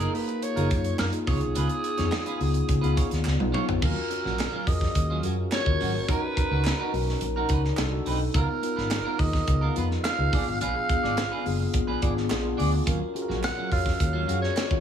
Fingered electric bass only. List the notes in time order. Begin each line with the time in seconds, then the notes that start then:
0.57 F#1
0.71 F#2
0.99 F#2
1.28 C#2
1.42 B1
1.56 C#2
1.99 F2
2.40 C#2
2.69 C#3
2.83 C#2
3.12 D#2
3.26 C#2
3.41 B1
3.69 A#1
3.83 D#2
4.25 A#1
4.67 F2
4.96 D#2
5.24 F#2
5.66 D#2
5.81 G#1
5.95 A#1
6.09 B1
6.51 C#2
6.93 B1
7.22 A#1
7.50 C#2
7.79 C2
8.07 B1
8.34 C#2
8.78 G#1
9.19 D#2
9.48 C#2
9.77 F2
10.18 C#2
10.33 A#1
10.47 G#1
10.61 A#1
11.04 G#1
11.46 F#1
11.74 A#1
12.03 G#1
12.31 A#1
12.59 D2
12.87 D#2
13.29 A#1
13.72 F2
14.00 D#2
14.29 F#2
14.71 D#2